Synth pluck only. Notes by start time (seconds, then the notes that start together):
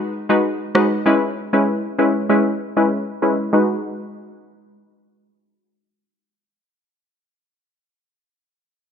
0.29 G#3 D#4 F#4 B4
0.75 G#3 D#4 F#4 B4
1.06 G#3 C#4 E4 B4
1.53 G#3 C#4 E4 B4
1.98 G#3 C#4 E4 B4
2.29 G#3 C#4 E4 B4
2.77 G#3 C#4 E4 B4
3.22 G#3 C#4 E4 B4
3.53 G#3 D#4 F#4 B4